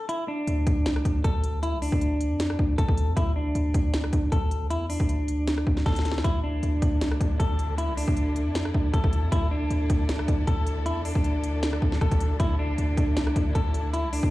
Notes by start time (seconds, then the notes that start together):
0.09 E4, closed hi-hat
0.28 D4
0.47 D2, closed hi-hat
0.67 D2, kick, closed hi-hat
0.86 C2, snare, closed hi-hat
0.96 D2, cross-stick
1.05 D2, kick, closed hi-hat
1.24 D2 A4, kick, closed hi-hat
1.44 closed hi-hat
1.63 E4, closed hi-hat
1.73 C2
1.82 D2 D4, open hi-hat
1.92 D2, kick
2.01 closed hi-hat
2.21 closed hi-hat
2.31 F2
2.40 snare, closed hi-hat
2.50 cross-stick
2.59 D2, kick
2.78 D2 A4, kick, closed hi-hat
2.88 D2, kick
2.98 closed hi-hat
3.08 F2
3.17 D2 E4, kick, closed hi-hat
3.36 D4
3.55 D2, closed hi-hat
3.74 D2, kick, closed hi-hat
3.94 snare, closed hi-hat
4.04 cross-stick
4.13 D2, kick, closed hi-hat
4.32 D2 A4, kick, closed hi-hat
4.51 closed hi-hat
4.70 E2 E4, closed hi-hat
4.90 D4, open hi-hat
5.00 D2, kick
5.09 closed hi-hat
5.28 closed hi-hat
5.47 snare, closed hi-hat
5.58 cross-stick
5.67 D2, kick
5.77 snare
5.86 D2 A4, kick, snare, closed hi-hat
5.92 snare, closed hi-hat
5.99 snare
6.05 snare, closed hi-hat
6.12 snare
6.18 snare
6.24 D2 D3 D4 E4 A4, kick, closed hi-hat
6.44 D4
6.63 D2, closed hi-hat
6.82 D2, kick, closed hi-hat
7.01 C2, snare, closed hi-hat
7.12 D2, cross-stick
7.21 D2, kick, closed hi-hat
7.40 D2 A4, kick, closed hi-hat
7.59 closed hi-hat
7.78 E4, closed hi-hat
7.88 C2
7.97 D2 D4, open hi-hat
8.08 D2, kick
8.17 closed hi-hat
8.36 closed hi-hat
8.46 F2
8.55 snare, closed hi-hat
8.65 cross-stick
8.74 D2, kick
8.94 D2 A4, kick, closed hi-hat
9.04 D2, kick
9.13 closed hi-hat
9.23 F2
9.32 D2 D3 D4 E4, kick, closed hi-hat
9.51 D4
9.70 D2, closed hi-hat
9.90 D2, kick, closed hi-hat
10.09 snare, closed hi-hat
10.19 cross-stick
10.28 D2, kick, closed hi-hat
10.47 D2 A4, kick, closed hi-hat
10.67 closed hi-hat
10.86 E2 E4, closed hi-hat
11.05 D4, open hi-hat
11.15 D2, kick
11.24 closed hi-hat
11.44 closed hi-hat
11.63 snare, closed hi-hat
11.73 cross-stick
11.82 D2, kick
11.92 snare
12.01 D2 A4, kick, cross-stick, closed hi-hat
12.11 D2, kick, closed hi-hat
12.21 closed hi-hat
12.40 D2 E4, kick, closed hi-hat
12.59 D4
12.78 D2, closed hi-hat
12.97 D2, kick, closed hi-hat
13.17 C2, snare, closed hi-hat
13.27 D2, cross-stick
13.36 D2, kick, closed hi-hat
13.55 D2 A4, kick, closed hi-hat
13.74 closed hi-hat
13.93 E4, closed hi-hat
14.04 C2
14.13 D2 D4, open hi-hat
14.23 D2, kick